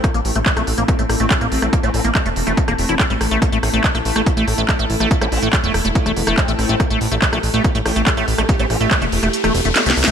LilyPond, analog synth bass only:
\new Staff \with { instrumentName = "Analog synth bass" } { \clef bass \time 4/4 \key a \minor \tempo 4 = 142 r16 a,,16 a,,16 a,,16 r16 bes,,16 a,,16 a,,16 r16 a,,16 a,,16 a,,16 r16 a,,16 a,,16 a,,16 | r16 a,,16 a,,16 a,,16 r16 e,,16 e,,16 e,,16 r16 e,,16 e,,16 e,,16 r16 a,,16 a,,16 a,,16 | r16 a,,16 a,,16 a,,16 r16 bes,,16 a,,16 a,,16 r16 a,,16 a,,16 a,,16 r16 a,,16 a,,16 a,,16 | r16 a,,16 a,,16 a,,16 r16 e,,16 e,,16 e,,16 r16 e,,16 e,,16 e,,16 r16 a,,16 a,,16 a,,16 |
r16 a,,16 a,,16 a,,16 r16 bes,,16 a,,16 a,,16 r16 a,,16 a,,16 a,,16 r16 a,,16 a,,16 a,,16 | r16 a,,16 a,,16 a,,16 r16 e,,16 e,,16 e,,16 r16 e,,16 e,,16 e,,16 r16 c,16 c,16 c,16 | }